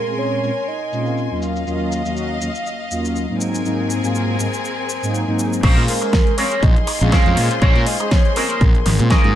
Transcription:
Already playing: A#4 G#5 C6
0.06 A#2 G#3 C4 C#4 G#4, shaker
0.19 C#5, shaker
0.42 A#2 G#3 C4 C#4 F4, shaker
0.57 shaker
0.68 D#5, shaker
0.92 A#2 G#3 C4 C#4 F4, shaker
1.07 shaker
1.18 shaker
1.30 D#2 F#3 A#3 C#4 F4
1.42 D#5 F5, shaker
1.56 shaker
1.66 D#2 F#3 A#3 C#4 F4, shaker
1.92 shaker
2.05 D#2 F#3 A#3 C#4 F#4, shaker
2.17 shaker
2.40 D#2 F#3 A#3 C#4 F4, shaker
2.55 shaker
2.67 shaker
2.90 D#2 F#3 A#3 C#4 F4, shaker
3.05 shaker
3.16 shaker
3.29 G#2 F#3 A#3 C4 D#4
3.40 C4 G#4 A#4 G#5, shaker
3.55 shaker
3.65 G#2 F#3 A#3 C4 D#4, shaker
3.90 shaker
4.03 G#2 F#3 A#3 C4 F4, shaker
4.15 shaker
4.39 G#2 F#3 A#3 C4 D#4, shaker
4.54 shaker
4.65 shaker
4.90 shaker
5.02 G#2 F#3 A#3 C4 D#4, shaker
5.15 shaker
5.27 G#2 F#3 A#3 C4 D#4
5.39 shaker
5.53 shaker
5.63 A#1 G#3 C#4 F4 G#4 A#4 C5 C6, kick, closed hi-hat, crash
5.77 A#2, closed hi-hat
5.88 A#4, open hi-hat
6.01 G#3 C#4 G#4 C5, muted clean electric guitar stroke, closed hi-hat
6.13 muted clean electric guitar stroke, kick, snare, closed hi-hat
6.27 closed hi-hat
6.37 G#3 C4 C#4 F4 G#4 A#4 C5 C#5, open hi-hat
6.52 closed hi-hat
6.63 A#1 D#5, kick, closed hi-hat
6.76 closed hi-hat
6.87 muted clean electric guitar stroke, open hi-hat
7.01 A#1 G#3 C4 C#4 F4, muted clean electric guitar stroke, closed hi-hat
7.12 C#4 G#4 A#4 C5 F5, kick, snare, closed hi-hat
7.25 F2 G#3 C#4 F4 C5, closed hi-hat
7.37 A#2, open hi-hat
7.51 closed hi-hat
7.61 A#1 G#3 C#4 F4 G#4 A#4 C5 C#5, kick, closed hi-hat
7.76 A#2, closed hi-hat
7.86 D#5, open hi-hat
8.00 G#3 C#4 G#4 C5, muted clean electric guitar stroke, closed hi-hat
8.11 C#5, muted clean electric guitar stroke, kick, snare, closed hi-hat
8.25 closed hi-hat
8.36 G#3 C4 C#4 F4 G#4 A#4 C5, open hi-hat
8.50 closed hi-hat
8.61 A#1, kick, closed hi-hat
8.75 closed hi-hat
8.85 G#1, muted clean electric guitar stroke, snare, open hi-hat
8.99 A#2 G#3 C4 C#4 F4, muted clean electric guitar stroke, closed hi-hat
9.10 C#4 G#4 A#4 D#5, kick, snare, closed hi-hat
9.24 G#2 F#3 A#3 C#4 F4, closed hi-hat

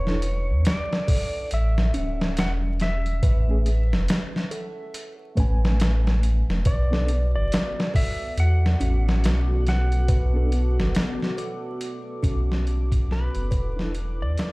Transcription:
Already playing: E1 B4 C#5
0.05 D4 E4 A4, snare
0.22 closed hi-hat
0.49 E2
0.65 D5, snare, closed hi-hat
0.93 snare
1.08 A4, kick, open hi-hat
1.51 A1 E5, closed hi-hat
1.78 snare
1.94 D1 C#4, closed hi-hat
2.21 snare
2.37 E1 F#5, snare, closed hi-hat
2.80 E5, snare, closed hi-hat
3.06 closed hi-hat
3.23 A1 B4, kick, closed hi-hat
3.48 A3 C#4 G#4
3.66 closed hi-hat
3.92 E1, snare
4.08 snare, closed hi-hat
4.36 snare
4.51 A4, closed hi-hat
4.94 closed hi-hat
5.35 A1 A3 C#4 B4, kick, closed hi-hat
5.40 G#5
5.65 snare
5.80 snare, closed hi-hat
6.07 snare
6.23 closed hi-hat
6.49 E1, snare
6.65 B1 B3 F#4 A4 B4 D5 D6, kick, closed hi-hat
6.91 B3 D4 A4, snare
7.08 closed hi-hat
7.35 F#1 D5
7.52 snare, closed hi-hat
7.80 snare
7.94 A4 E5, kick, open hi-hat
8.37 E2 F#5, closed hi-hat
8.66 snare
8.80 A1 C#4, closed hi-hat
9.09 snare
9.23 B1, snare, closed hi-hat
9.66 F#5, snare, closed hi-hat
9.92 closed hi-hat
10.08 B4, kick, closed hi-hat
10.34 B3 D4 A4
10.52 closed hi-hat
10.78 F#1, snare
10.95 snare, closed hi-hat
11.22 snare
11.37 A4, closed hi-hat
11.81 closed hi-hat
12.23 B1 C#4, kick, closed hi-hat
12.52 snare
12.67 closed hi-hat
12.92 kick, closed hi-hat
13.11 B4, snare
13.35 F#1, closed hi-hat
13.51 E1 E4 B4, kick, closed hi-hat
13.76 D4 E4 A4, snare
13.95 closed hi-hat
14.21 E2 D5
14.37 snare, closed hi-hat

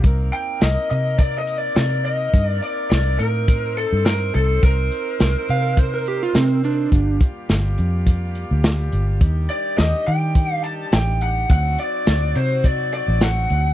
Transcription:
0.04 C2 A#3 C4 D#4 A#4, kick, closed hi-hat
0.33 G5, closed hi-hat
0.61 C2 D#5, snare, closed hi-hat
0.90 C3 D#5, closed hi-hat
1.19 D5, kick, closed hi-hat
1.38 D#5
1.47 closed hi-hat
1.58 D5
1.76 C3 D5, snare, closed hi-hat
2.05 D#5, closed hi-hat
2.34 G2, kick, closed hi-hat
2.48 D5
2.62 D5, closed hi-hat
2.91 C2 D5, snare, closed hi-hat
3.19 A2 A#4, closed hi-hat
3.48 C4 C5, kick, closed hi-hat
3.77 A4, closed hi-hat
3.93 G2
4.06 A#4, snare, closed hi-hat
4.34 C2 A4, closed hi-hat
4.63 C2 A#4, kick, closed hi-hat
4.92 closed hi-hat
5.20 C2, snare, closed hi-hat
5.49 C3 F5, closed hi-hat
5.77 C5, kick, closed hi-hat
5.94 A#4
6.06 G4, closed hi-hat
6.23 F4
6.35 C3 C4, snare, closed hi-hat
6.64 D4, closed hi-hat
6.92 G1 G3 A#3 F4 G4, kick, closed hi-hat
7.21 kick, closed hi-hat
7.49 G1, snare, closed hi-hat
7.78 F2, closed hi-hat
8.07 kick, closed hi-hat
8.35 closed hi-hat
8.51 D2
8.64 snare, closed hi-hat
8.92 G1, closed hi-hat
9.20 D#2 D#3 D4 D#4, kick, closed hi-hat
9.49 D5, closed hi-hat
9.78 D#2 D#5, snare, closed hi-hat
10.07 D#3 G5, closed hi-hat
10.35 kick, closed hi-hat
10.53 F5
10.64 A5, closed hi-hat
10.92 A1 G5, snare, closed hi-hat
11.21 F#5, closed hi-hat
11.50 D2 F#3 C4 D#4 F#4 F#5, kick, closed hi-hat
11.79 D5, closed hi-hat
12.07 D2, snare, closed hi-hat
12.36 C3 C5, closed hi-hat
12.64 D5, kick, closed hi-hat
12.93 D5, closed hi-hat
13.08 A1
13.21 F#5, snare, closed hi-hat
13.50 D2, closed hi-hat

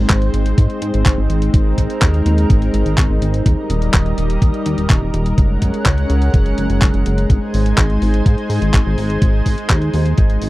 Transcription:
Already playing: G#3 C4 D#4 C5
0.10 G#1, kick, clap, closed hi-hat
0.22 closed hi-hat
0.34 G#1, closed hi-hat
0.46 closed hi-hat
0.58 G#2, kick, closed hi-hat
0.70 closed hi-hat
0.82 G#2, closed hi-hat
0.94 G#1, closed hi-hat
1.06 G#1, kick, clap, closed hi-hat
1.18 G#1
1.30 G#1, closed hi-hat
1.42 closed hi-hat
1.54 G#1 A#4, kick, closed hi-hat
1.78 G#1, kick, closed hi-hat
1.90 closed hi-hat
2.02 D#2, kick, clap, closed hi-hat
2.14 closed hi-hat
2.26 D#2, closed hi-hat
2.38 closed hi-hat
2.50 G#1, kick, closed hi-hat
2.62 closed hi-hat
2.74 G#1, closed hi-hat
2.86 G#1, closed hi-hat
2.98 G#1, kick, clap, closed hi-hat
3.10 G#1
3.22 G#1, closed hi-hat
3.34 closed hi-hat
3.46 D#1 G3 A#4 D#5, kick, closed hi-hat
3.70 D#1, closed hi-hat
3.82 closed hi-hat
3.94 D#1, kick, clap, closed hi-hat
4.06 closed hi-hat
4.18 D#1, closed hi-hat
4.30 closed hi-hat
4.42 D#2, kick, closed hi-hat
4.54 closed hi-hat
4.66 D#2, closed hi-hat
4.78 D#1, closed hi-hat
4.90 D#1, kick, clap, closed hi-hat
5.02 D#1
5.14 D#1, closed hi-hat
5.26 closed hi-hat
5.37 F#1 G#3 C#4 F#5, kick, closed hi-hat
5.62 F#1, kick, closed hi-hat
5.74 closed hi-hat
5.86 C#2, kick, clap, closed hi-hat
5.98 closed hi-hat
6.10 C#2, closed hi-hat
6.22 closed hi-hat
6.34 F#1, kick, closed hi-hat
6.46 closed hi-hat
6.58 F#1, closed hi-hat
6.70 F#1, closed hi-hat
6.82 F#1, kick, clap, closed hi-hat
6.94 F#1, closed hi-hat
7.06 F#1, closed hi-hat
7.18 closed hi-hat
7.29 G#1 D#4 C5 G#5, kick, closed hi-hat
7.54 G#1, open hi-hat
7.66 closed hi-hat
7.78 G#1, kick, clap, closed hi-hat
7.90 closed hi-hat
8.02 G#1, open hi-hat
8.14 closed hi-hat
8.26 G#2, kick, closed hi-hat
8.38 closed hi-hat
8.50 G#2, open hi-hat
8.62 G#1, closed hi-hat
8.74 G#1, kick, clap, closed hi-hat
8.86 G#1
8.98 G#1, open hi-hat
9.10 closed hi-hat
9.22 G#1, kick, closed hi-hat
9.46 G#1, kick, open hi-hat
9.58 closed hi-hat
9.70 D#2, kick, clap, closed hi-hat
9.82 closed hi-hat
9.94 D#2, open hi-hat
10.06 closed hi-hat
10.18 G#1, kick, closed hi-hat
10.30 closed hi-hat
10.42 G#1, open hi-hat

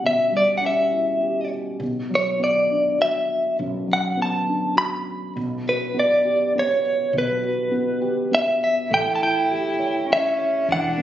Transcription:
Already playing: B2 G3 C#4 E4 G4
0.03 B2 E5
0.32 G3
0.37 D5
0.58 C#4 F#5
0.66 E5
0.90 E4
1.21 G4
1.80 B1 B2
2.10 F#3
2.15 C#5
2.39 B3
2.44 D5
2.70 D4
2.98 F#4 E5
3.59 B1 F#2
3.88 F#3
3.93 F#5
4.17 B3
4.22 A5
4.47 D4
4.75 F#4 B5
5.35 B1 B2
5.66 F#4 B4
5.94 B3
5.99 D5
6.25 G4
6.55 B3
6.59 C#5
7.13 B1 B2
7.18 B4
7.43 F#4
7.71 B3
8.01 G4
8.31 B3 E5
8.64 E5
8.90 A1 A3 E4 G5
9.15 A5
9.20 E4 G5
9.51 G4
9.79 C#5
10.09 C#4 E4
10.13 E5
10.38 C#5
10.68 E1 E3 D4
10.72 F#5
10.98 B3

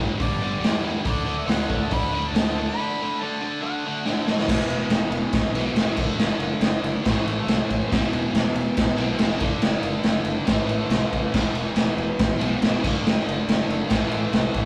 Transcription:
Already playing: G2 D3
0.00 G1 G3
0.18 G1 G2 D3 G3 D5, kick, open hi-hat
0.40 G2 D3 G3
0.59 E2 G2 D3 G3
0.63 snare, open hi-hat
0.82 G2 D3 G3
1.03 D2 D3 A3 D4, kick, open hi-hat
1.09 D5
1.24 D3 A3 D4
1.40 E5
1.45 D2 D3 A3 D4, open hi-hat
1.49 F#5, snare
1.68 D2 D3 A3 D4, kick
1.81 A5
1.90 D2 D3 A3 D4 B5, kick, open hi-hat
2.11 D3 A3 D4
2.27 A5
2.31 D2 D3 A3, open hi-hat
2.35 D4 A5, snare
2.57 D3 A3 D4
2.68 B5
2.77 D3 A3 D4
3.01 D3 A3 D4
3.21 D3 A3 D4 A5
3.41 D3 A3 D4
3.61 D3 A3 D4 F#5
3.86 D3 A3 D4
4.05 D3 A3 D4, snare
4.28 D3 A3 D4, snare
4.39 snare
4.46 E1 E2 B2, kick, snare, crash
4.53 E3
4.68 E1, ride
4.88 E1, snare, ride
5.10 E1, ride
5.33 E1, kick, snare, ride
5.52 B1 E3, ride
5.57 E2 B2
5.73 E1 E2, snare, ride
5.78 B2 E3
5.95 F#1 D3 A3, kick, crash
6.01 D4
6.16 F#1, snare
6.38 F#1, ride
6.60 F#1, snare, ride
6.81 F#1, ride
7.04 A1 A2 E3, kick, snare, ride
7.09 A3
7.24 A1, ride
7.46 C2, snare, ride
7.70 A2, kick, ride
7.89 E1 E2 B2, kick, snare, ride
7.95 E3
8.12 E1, ride
8.33 E1, snare, ride
8.53 E1, ride
8.77 E1, kick, snare, ride
8.96 B1 B2 E3, ride
9.02 E2
9.18 E1 E2, snare, ride
9.23 B2 E3
9.40 F#1 D3 A3, kick, ride
9.46 D4
9.61 F#1, snare, ride
9.83 F#1, ride
10.03 F#1, snare, ride
10.25 F#1, ride
10.45 A1 A2 E3, kick, snare, ride
10.51 A3
10.67 A1, ride
10.89 C2, snare, ride
11.13 F#1, kick, ride
11.32 E1 E2 B2, kick, snare, crash
11.38 E3
11.53 E1, ride
11.75 E1, snare, ride
11.96 E1, ride
12.19 E1, kick, snare, ride
12.38 B1 B2 E3, ride
12.44 E2
12.61 E1 E2 B2, snare, ride
12.67 E3
12.83 F#1 D3 A3, kick, crash
12.88 D4
13.03 F#1, snare
13.26 F#1, ride
13.47 F#1, snare, ride
13.67 F#1, ride
13.89 A1 A2 E3, kick, snare, ride
13.95 A3
14.10 A1, ride
14.33 C2, snare, ride
14.54 A2, kick, ride

